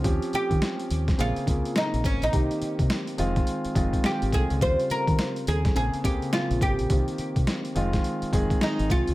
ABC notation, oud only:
X:1
M:4/4
L:1/16
Q:"Swing 16ths" 1/4=105
K:Bbdor
V:1 name="Oud"
z2 G6 F4 E2 D E- | E3 z8 z G2 A2 | c2 B4 A2 A2 G2 F2 G2- | G8- G2 z2 E2 F2 |]